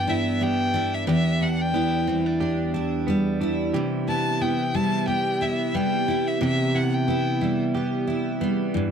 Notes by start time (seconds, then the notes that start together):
Already playing: G2 E3 G3 B3 G4 G5
0.07 D4 E4 E5
0.41 G3 B3 G5
0.74 D4 E4
0.94 E5
1.07 E2 B3 G4 E5
1.41 D4 F#5
1.61 G5
1.74 B3 E4
2.07 G3 C4
2.26 D4
2.40 D4 G4
2.74 D4 E4
3.07 G3 B3
3.41 D4 E4
3.74 C3 E3 G4
4.07 B3 E4 A5
4.41 B3 E4 G5
4.74 G3 E4 A5
5.08 B3 G4 G5
5.41 E4 E5
5.74 G3 B3 G5
6.08 E4
6.27 E5
6.41 C3 E3 G4 E5
6.75 B3 E4 F#5
6.94 G5
7.08 B3 E4
7.41 G3 E4
7.74 B3 G4
8.07 E4
8.41 G3 B3
8.74 G2 E3